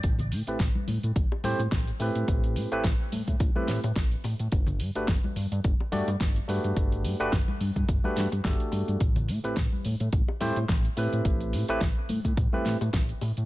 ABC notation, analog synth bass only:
X:1
M:4/4
L:1/16
Q:"Swing 16ths" 1/4=107
K:Ador
V:1 name="Analog synth bass" clef=bass
A,,,2 A,, A,,, A,,, z A,, A,, A,,, z A,, A,, A,,, z A,, A,, | A,,,2 A,, A,,, A,,, z A,, A,, A,,, z A,, A,, A,,, z A,, A,, | G,,,2 G,, G,,, G,,, z G,, G,, G,,, z G,, G,, G,,, z G,, G,, | G,,,2 G,, G,,, G,,, z G,, G,, G,,, z G,, G,, G,,, z G,, G,, |
A,,,2 A,, A,,, A,,, z A,, A,, A,,, z A,, A,, A,,, z A,, A,, | A,,,2 A,, A,,, A,,, z A,, A,, A,,, z A,, A,, A,,, z A,, A,, |]